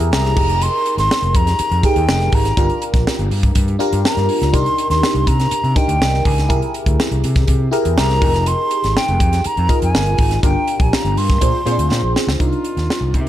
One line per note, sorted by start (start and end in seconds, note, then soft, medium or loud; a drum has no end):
0.00 0.39 E4 loud
0.00 0.36 G4 medium
0.00 0.37 G#4 medium
0.00 0.37 A#4 loud
0.00 closed hi-hat medium
0.12 0.31 C2 loud
0.12 0.64 A#5 loud
0.12 snare loud
0.24 snare soft
0.24 closed hi-hat soft
0.36 0.66 F1 loud
0.36 1.15 D#4 medium
0.36 1.15 G4 medium
0.36 1.15 G#4 medium
0.36 1.15 A#4 medium
0.36 kick loud
0.36 crash medium
0.49 closed hi-hat medium
0.61 0.98 C6 loud
0.61 closed hi-hat medium
0.86 closed hi-hat medium
0.98 1.07 G#1 medium
0.98 1.38 C6 loud
0.98 snare soft
0.98 closed hi-hat soft
1.11 snare loud
1.22 1.32 F1 medium
1.22 closed hi-hat soft
1.34 1.54 F2 medium
1.34 1.87 A#5 loud
1.34 kick medium
1.34 closed hi-hat medium
1.47 snare soft
1.47 closed hi-hat medium
1.59 muted fingered electric bass stroke medium
1.59 closed hi-hat medium
1.71 1.81 F2 medium
1.71 closed hi-hat soft
1.83 2.41 D#4 medium
1.83 2.41 G4 medium
1.83 2.42 G#4 medium
1.83 2.42 A#4 medium
1.83 2.36 G5 loud
1.83 kick medium
1.83 closed hi-hat medium
1.96 2.06 D#2 medium
1.96 closed hi-hat medium
2.09 2.28 F1 loud
2.09 snare loud
2.20 snare soft
2.20 closed hi-hat soft
2.32 2.52 G#1 medium
2.32 2.83 A#5 medium
2.32 kick loud
2.32 open hi-hat medium
2.45 snare soft
2.45 closed hi-hat medium
2.57 2.67 G1 loud
2.57 3.34 D4 medium
2.57 3.34 F4 medium
2.57 3.34 G4 medium
2.57 3.35 A#4 medium
2.57 kick loud
2.57 closed hi-hat medium
2.70 closed hi-hat soft
2.82 closed hi-hat medium
2.94 3.04 A#1 medium
2.94 kick loud
2.94 snare soft
2.94 closed hi-hat medium
3.07 snare loud
3.19 3.29 G1 medium
3.19 closed hi-hat soft
3.31 3.50 G2 loud
3.31 open hi-hat medium
3.43 kick medium
3.43 closed hi-hat medium
3.55 3.75 G2 loud
3.55 kick medium
3.55 closed hi-hat loud
3.68 closed hi-hat soft
3.79 4.37 D4 medium
3.79 4.37 F4 medium
3.79 4.38 G4 medium
3.79 4.38 A#4 loud
3.79 closed hi-hat medium
3.93 4.02 G2 medium
3.93 closed hi-hat medium
4.05 4.56 A#5 loud
4.05 snare loud
4.17 4.27 G2 medium
4.17 snare soft
4.17 closed hi-hat soft
4.29 open hi-hat medium
4.42 4.54 C#2 medium
4.42 snare soft
4.42 closed hi-hat medium
4.53 4.63 C2 loud
4.53 5.30 D4 medium
4.53 5.30 D#4 medium
4.53 5.30 G4 medium
4.53 5.31 A#4 medium
4.53 4.90 C6 loud
4.53 kick loud
4.53 closed hi-hat medium
4.66 closed hi-hat soft
4.78 closed hi-hat medium
4.90 5.00 D#2 medium
4.90 5.29 C6 medium
4.90 snare soft
4.90 closed hi-hat medium
5.03 snare loud
5.15 5.24 C2 medium
5.15 closed hi-hat soft
5.27 5.47 C3 medium
5.27 5.78 A#5 loud
5.27 kick medium
5.27 closed hi-hat medium
5.40 snare soft
5.40 closed hi-hat medium
5.51 muted fingered electric bass stroke soft
5.51 closed hi-hat medium
5.64 5.74 C3 loud
5.64 closed hi-hat soft
5.76 6.34 D4 medium
5.76 6.34 D#4 medium
5.76 6.34 G4 medium
5.76 6.34 A#4 medium
5.76 6.27 G5 loud
5.76 kick loud
5.76 closed hi-hat medium
5.88 5.98 D2 medium
5.88 closed hi-hat medium
6.00 6.20 C2 medium
6.00 snare loud
6.14 snare soft
6.25 6.50 C#2 loud
6.25 6.75 G#5 medium
6.25 kick medium
6.25 open hi-hat medium
6.38 snare soft
6.38 closed hi-hat medium
6.49 6.60 C2 loud
6.49 7.26 E4 medium
6.49 7.26 G4 medium
6.49 7.27 G#4 medium
6.49 7.27 A#4 medium
6.49 kick loud
6.49 closed hi-hat medium
6.62 closed hi-hat soft
6.74 closed hi-hat medium
6.86 6.96 D2 medium
6.86 kick medium
6.86 closed hi-hat soft
7.00 snare loud
7.11 7.21 C2 medium
7.11 closed hi-hat soft
7.24 7.43 C3 medium
7.24 closed hi-hat medium
7.36 kick medium
7.36 snare soft
7.36 closed hi-hat medium
7.48 7.68 C3 loud
7.48 kick medium
7.48 closed hi-hat medium
7.71 8.21 E4 medium
7.71 8.20 G4 medium
7.71 8.21 G#4 medium
7.71 8.21 A#4 loud
7.71 closed hi-hat medium
7.85 7.95 E2 loud
7.85 closed hi-hat medium
7.98 8.17 C2 loud
7.98 8.49 A#5 loud
7.98 snare loud
8.09 snare soft
8.09 closed hi-hat soft
8.21 8.51 F1 loud
8.21 9.00 D#4 medium
8.21 9.00 G4 medium
8.21 9.01 G#4 medium
8.21 9.01 A#4 medium
8.21 kick loud
8.21 open hi-hat medium
8.34 snare soft
8.34 closed hi-hat medium
8.46 8.99 C6 loud
8.46 closed hi-hat medium
8.71 closed hi-hat medium
8.84 8.94 G#1 medium
8.84 snare soft
8.84 closed hi-hat medium
8.97 9.48 G5 loud
8.97 snare loud
9.08 9.18 F1 loud
9.08 closed hi-hat soft
9.20 9.40 F2 loud
9.20 kick medium
9.20 closed hi-hat medium
9.33 snare soft
9.33 closed hi-hat medium
9.44 9.83 A#5 loud
9.44 muted fingered electric bass stroke soft
9.44 closed hi-hat medium
9.57 9.67 F2 loud
9.57 closed hi-hat soft
9.69 10.27 D#4 medium
9.69 10.27 F4 medium
9.69 10.27 G#4 medium
9.69 10.27 A#4 medium
9.69 kick loud
9.69 closed hi-hat medium
9.82 9.92 F2 medium
9.82 10.40 G#5 loud
9.82 closed hi-hat medium
9.95 10.14 G1 loud
9.95 snare loud
10.06 closed hi-hat soft
10.18 10.38 G#1 medium
10.18 kick medium
10.18 open hi-hat medium
10.31 snare soft
10.31 closed hi-hat medium
10.43 10.53 G1 loud
10.43 11.20 D4 medium
10.43 11.20 F4 medium
10.43 11.20 G4 medium
10.43 11.21 A#4 medium
10.43 10.83 G5 loud
10.43 kick loud
10.43 closed hi-hat medium
10.68 closed hi-hat medium
10.80 10.90 A#1 medium
10.80 10.96 G#5 medium
10.80 kick medium
10.80 closed hi-hat soft
10.93 11.19 A#5 loud
10.93 snare loud
11.04 11.14 G1 medium
11.04 closed hi-hat soft
11.17 11.36 G2 loud
11.17 12.16 C6 loud
11.17 open hi-hat medium
11.30 kick medium
11.30 snare soft
11.30 closed hi-hat medium
11.41 11.51 A#2 loud
11.41 11.61 D4 medium
11.41 11.61 F4 medium
11.41 11.61 G#4 medium
11.41 11.62 C5 medium
11.41 kick medium
11.41 closed hi-hat loud
11.65 11.76 A#2 loud
11.65 11.72 C4 medium
11.65 12.24 F4 medium
11.65 12.24 G#4 medium
11.65 12.24 C5 medium
11.65 closed hi-hat medium
11.71 12.27 D4 medium
11.78 11.88 D2 medium
11.78 closed hi-hat medium
11.91 12.00 A#2 loud
11.91 snare medium
12.03 12.13 A#1 medium
12.16 snare medium
12.27 12.37 C#2 medium
12.27 snare medium
12.39 12.50 C2 medium
12.39 13.17 D4 medium
12.39 13.17 D#4 medium
12.39 13.17 F4 medium
12.39 13.18 A#4 medium
12.39 kick medium
12.39 closed hi-hat medium
12.52 closed hi-hat soft
12.64 closed hi-hat medium
12.77 12.87 D#2 medium
12.77 snare soft
12.77 closed hi-hat soft
12.90 snare medium
13.01 13.15 C2 medium
13.14 13.29 C3 medium
13.14 13.29 D#4 medium
13.14 kick medium
13.14 closed hi-hat medium